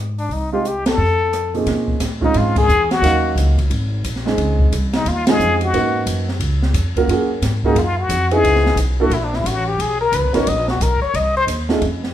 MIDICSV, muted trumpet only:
0, 0, Header, 1, 2, 480
1, 0, Start_track
1, 0, Key_signature, -5, "minor"
1, 0, Tempo, 338409
1, 444, Time_signature, 4, 2, 24, 8
1, 17215, End_track
2, 0, Start_track
2, 0, Title_t, "Muted trumpet"
2, 0, Program_c, 0, 59
2, 270, Note_on_c, 0, 62, 75
2, 460, Note_on_c, 0, 63, 68
2, 481, Note_off_c, 0, 62, 0
2, 737, Note_off_c, 0, 63, 0
2, 746, Note_on_c, 0, 65, 73
2, 956, Note_on_c, 0, 67, 77
2, 977, Note_off_c, 0, 65, 0
2, 1228, Note_off_c, 0, 67, 0
2, 1236, Note_on_c, 0, 69, 92
2, 2227, Note_off_c, 0, 69, 0
2, 3181, Note_on_c, 0, 63, 81
2, 3373, Note_on_c, 0, 65, 76
2, 3395, Note_off_c, 0, 63, 0
2, 3651, Note_off_c, 0, 65, 0
2, 3658, Note_on_c, 0, 68, 102
2, 4092, Note_off_c, 0, 68, 0
2, 4135, Note_on_c, 0, 66, 91
2, 4740, Note_off_c, 0, 66, 0
2, 7027, Note_on_c, 0, 63, 83
2, 7206, Note_on_c, 0, 65, 86
2, 7227, Note_off_c, 0, 63, 0
2, 7498, Note_on_c, 0, 68, 117
2, 7519, Note_off_c, 0, 65, 0
2, 7965, Note_off_c, 0, 68, 0
2, 7986, Note_on_c, 0, 66, 94
2, 8585, Note_off_c, 0, 66, 0
2, 10859, Note_on_c, 0, 63, 82
2, 11047, Note_on_c, 0, 65, 83
2, 11068, Note_off_c, 0, 63, 0
2, 11338, Note_on_c, 0, 66, 94
2, 11360, Note_off_c, 0, 65, 0
2, 11813, Note_on_c, 0, 68, 106
2, 11835, Note_off_c, 0, 66, 0
2, 12462, Note_off_c, 0, 68, 0
2, 12781, Note_on_c, 0, 66, 88
2, 12953, Note_on_c, 0, 64, 77
2, 12975, Note_off_c, 0, 66, 0
2, 13103, Note_on_c, 0, 62, 70
2, 13125, Note_off_c, 0, 64, 0
2, 13262, Note_on_c, 0, 64, 75
2, 13283, Note_off_c, 0, 62, 0
2, 13426, Note_on_c, 0, 66, 84
2, 13448, Note_off_c, 0, 64, 0
2, 13722, Note_on_c, 0, 67, 90
2, 13744, Note_off_c, 0, 66, 0
2, 13917, Note_on_c, 0, 68, 80
2, 13938, Note_off_c, 0, 67, 0
2, 14190, Note_off_c, 0, 68, 0
2, 14199, Note_on_c, 0, 70, 102
2, 14387, Note_on_c, 0, 71, 88
2, 14408, Note_off_c, 0, 70, 0
2, 14672, Note_off_c, 0, 71, 0
2, 14680, Note_on_c, 0, 73, 89
2, 14865, Note_on_c, 0, 75, 101
2, 14886, Note_off_c, 0, 73, 0
2, 15154, Note_off_c, 0, 75, 0
2, 15170, Note_on_c, 0, 66, 74
2, 15353, Note_on_c, 0, 70, 78
2, 15374, Note_off_c, 0, 66, 0
2, 15618, Note_off_c, 0, 70, 0
2, 15627, Note_on_c, 0, 73, 97
2, 15825, Note_on_c, 0, 75, 95
2, 15846, Note_off_c, 0, 73, 0
2, 16114, Note_off_c, 0, 75, 0
2, 16122, Note_on_c, 0, 72, 102
2, 16226, Note_off_c, 0, 72, 0
2, 17215, End_track
0, 0, End_of_file